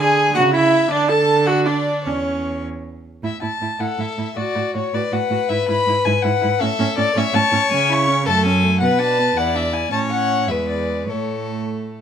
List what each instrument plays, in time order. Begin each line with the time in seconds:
Already playing: cello D3
0.00 viola G#4, violin G#5
0.34 cello C#3, viola F#4, violin F#5
0.54 viola E4, violin E5
0.90 cello D3, viola D4, violin D5
1.08 viola A4, violin A5
1.46 viola F#4, violin F#5
1.65 viola D4, violin D5
2.04 cello E2, viola C#4, violin C#5
3.23 cello A2, viola E4, violin E5
3.41 cello A2, viola E4, violin A5
3.61 cello A2, viola E4
3.79 cello A2, viola E4, violin A4 F#5
3.98 cello A2, viola E4, violin E5
4.17 cello A2, viola E4
4.36 cello A2, viola F#4, violin F#4 D5
4.55 cello A2, viola F#4
4.74 cello A2, viola F#4, violin C#5
4.93 cello A2, viola F#4, violin B4 D5
5.12 cello A2, viola F#4, violin F#5
5.30 cello A2, viola F#4
5.49 cello G#2, viola E4, violin E5
5.68 cello G#2, viola E4, violin B5
5.86 cello G#2, viola E4
6.05 cello G#2, viola E4, violin G#5
6.22 cello G#2, viola E4, violin F#5
6.41 cello G#2, viola E4
6.59 cello A2, viola C#4, violin A4 E5
6.79 cello A2, viola C#4
6.96 cello A2, viola C#4, violin D5
7.15 cello A2, viola C#4, violin C#5 E5
7.33 cello A2, viola C#4, violin A5
7.51 cello A2, viola C#4
7.71 cello C#3, viola C#4, violin G#5
7.89 viola E4, violin C#6
8.08 viola C#4
8.26 cello F#2, viola A3, violin A4 A5
8.45 viola C#4, violin G#5
8.64 viola A3
8.80 cello B2, viola B3, violin B4 F#5
8.99 viola D4, violin A5
9.18 viola B3
9.36 cello E2, viola E4, violin D5 F#5
9.55 viola D4, violin E5
9.73 viola E4, violin G#5
9.91 cello A2, viola C#4, violin C#5 A5
10.10 violin F#5
10.48 cello E2, viola G#3, violin B4 E5
10.69 violin D5
11.07 cello A2, viola A3, violin A4 C#5